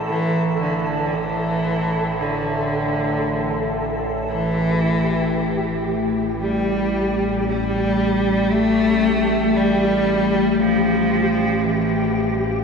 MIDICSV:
0, 0, Header, 1, 4, 480
1, 0, Start_track
1, 0, Tempo, 500000
1, 12133, End_track
2, 0, Start_track
2, 0, Title_t, "Synth texture"
2, 0, Program_c, 0, 99
2, 0, Note_on_c, 0, 69, 75
2, 4106, Note_on_c, 0, 67, 76
2, 4124, Note_off_c, 0, 69, 0
2, 12133, Note_off_c, 0, 67, 0
2, 12133, End_track
3, 0, Start_track
3, 0, Title_t, "Cello"
3, 0, Program_c, 1, 42
3, 77, Note_on_c, 1, 52, 95
3, 537, Note_off_c, 1, 52, 0
3, 579, Note_on_c, 1, 50, 78
3, 1097, Note_on_c, 1, 52, 93
3, 1111, Note_off_c, 1, 50, 0
3, 2110, Note_on_c, 1, 50, 81
3, 2125, Note_off_c, 1, 52, 0
3, 3610, Note_off_c, 1, 50, 0
3, 4108, Note_on_c, 1, 52, 105
3, 5580, Note_off_c, 1, 52, 0
3, 6148, Note_on_c, 1, 55, 80
3, 7106, Note_off_c, 1, 55, 0
3, 7161, Note_on_c, 1, 55, 98
3, 8163, Note_on_c, 1, 57, 104
3, 8177, Note_off_c, 1, 55, 0
3, 9178, Note_on_c, 1, 55, 93
3, 9192, Note_off_c, 1, 57, 0
3, 10173, Note_on_c, 1, 53, 87
3, 10187, Note_off_c, 1, 55, 0
3, 11171, Note_on_c, 1, 52, 71
3, 11185, Note_off_c, 1, 53, 0
3, 11929, Note_off_c, 1, 52, 0
3, 12133, End_track
4, 0, Start_track
4, 0, Title_t, "Synth drone"
4, 0, Program_c, 2, 95
4, 0, Note_on_c, 2, 33, 78
4, 0, Note_on_c, 2, 45, 72
4, 4084, Note_off_c, 2, 45, 0
4, 4087, Note_off_c, 2, 33, 0
4, 4095, Note_on_c, 2, 45, 74
4, 4098, Note_on_c, 2, 33, 83
4, 12133, Note_off_c, 2, 33, 0
4, 12133, Note_off_c, 2, 45, 0
4, 12133, End_track
0, 0, End_of_file